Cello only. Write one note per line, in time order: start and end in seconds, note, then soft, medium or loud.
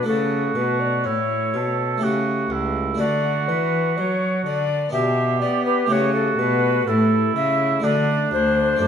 0.08 0.56 C#3 medium
0.57 1.07 B2 medium
1.06 1.56 A2 medium
1.55 2.02 B2 medium
2.03 2.50 C#3 medium
2.51 2.99 C#2 medium
3.01 3.50 D3 medium
3.49 3.99 E3 medium
3.98 4.45 F#3 medium
4.46 4.93 D3 medium
4.94 5.43 B2 medium
5.41 5.89 B3 medium
5.90 6.37 C#3 medium
6.38 6.86 B2 medium
6.87 7.34 A2 medium
7.36 7.83 C#3 medium
7.84 8.31 D3 medium
8.33 8.80 D2 medium
8.80 8.88 F#2 medium